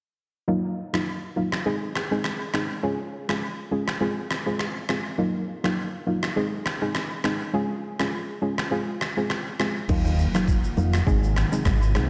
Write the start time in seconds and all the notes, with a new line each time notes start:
0.48 F#3 A#3 D#4 F4
0.93 F#3 A#3 D#4 F4, finger snap, cross-stick
1.36 F#3 A#3 D#4 F4
1.52 finger snap, cross-stick
1.65 G#3 C4 D#4 G#4
1.95 finger snap, cross-stick
2.11 G#3 C4 D#4 G#4
2.24 finger snap, cross-stick
2.53 G#3 C4 D#4 G#4, finger snap, cross-stick
2.83 G#3 C#4 F4 G#4
3.28 G#3 C#4 F4 G#4, finger snap, cross-stick
3.71 G#3 C#4 F4 G#4
3.88 finger snap, cross-stick
4.00 G#3 C4 F4 G#4
4.31 finger snap, cross-stick
4.46 G#3 C4 F4 G#4
4.59 finger snap, cross-stick
4.89 G#3 C4 F4 G#4, finger snap, cross-stick
5.18 F#3 A#3 D#4 F4
5.64 F#3 A#3 D#4 F4, finger snap, cross-stick
6.06 F#3 A#3 D#4 F4
6.23 finger snap, cross-stick
6.36 G#3 C4 D#4 G#4
6.66 finger snap, cross-stick
6.81 G#3 C4 D#4 G#4
6.95 finger snap, cross-stick
7.24 G#3 C4 D#4 G#4, finger snap, cross-stick
7.53 G#3 C#4 F4 G#4
7.99 G#3 C#4 F4 G#4, finger snap, cross-stick
8.42 G#3 C#4 F4 G#4
8.58 finger snap, cross-stick
8.71 G#3 C4 F4 G#4
9.01 finger snap, cross-stick
9.17 G#3 C4 F4 G#4
9.30 finger snap, cross-stick
9.59 G#3 C4 F4 G#4, finger snap, cross-stick
9.89 D#2 D#3 F#3 A#3 D#4 F4, kick, crash, impact, shaker
10.05 high conga, shaker
10.19 shaker
10.34 F#3 A#3 D#4 F4, finger snap, cross-stick, shaker
10.48 kick, shaker
10.64 shaker
10.77 F2 F#3 A#3 D#4 F4, high conga, shaker
10.93 finger snap, cross-stick, shaker
11.06 G#1 C3 G#3 C4 D#4 G#4, kick, low conga, shaker
11.23 shaker
11.36 finger snap, cross-stick, high conga, shaker
11.52 G#3 C4 D#4 G#4, shaker
11.65 G#1, finger snap, kick, cross-stick, high conga, low conga, shaker
11.82 shaker
11.95 C2 G#3 C4 D#4 G#4, finger snap, cross-stick, high conga, low conga, shaker